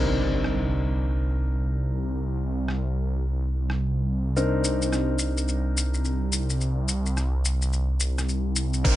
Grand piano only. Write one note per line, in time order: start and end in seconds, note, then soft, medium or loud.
0.00 4.34 C4 medium
0.00 4.34 D4 medium
0.00 4.34 D#4 medium
0.00 4.34 A#4 medium
4.36 8.82 C4 medium
4.36 8.82 D4 medium
4.36 8.82 D#4 medium
4.36 8.82 A#4 medium
8.84 8.96 C4 medium
8.84 8.96 D4 medium
8.84 8.96 D#4 medium
8.84 8.96 A#4 loud